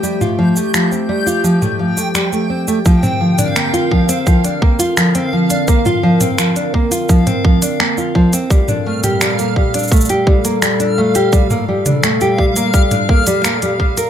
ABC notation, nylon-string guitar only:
X:1
M:4/4
L:1/16
Q:1/4=85
K:Bb
V:1 name="Nylon-string guitar"
G, F F, A, F, C G, F F, A, F, A, G, A, C A, | F, C F, D B, F F, C F, D B, F F, C F, D | B, F F, C F, D B, F F, C F, D B, F F, C | G, D A, G G, B, G, D A, G G, B, G, D A, G |
G, B, G, D A, G G, B, G, D B, G, B, G, G, B |]